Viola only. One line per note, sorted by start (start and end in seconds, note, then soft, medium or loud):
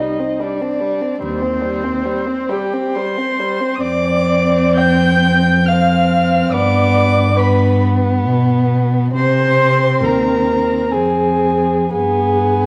0.00 0.41 D#4 medium
0.39 1.22 D4 medium
1.23 2.53 C4 medium
2.52 2.99 G4 medium
2.97 3.81 C5 medium
3.81 4.79 D5 medium
4.77 5.69 G5 loud
5.67 6.52 F5 medium
6.52 7.38 D5 medium
7.37 7.82 B4 medium
9.14 9.99 C5 loud
10.04 10.95 A#4 medium
10.94 11.92 G#4 medium
11.93 12.66 G#4 medium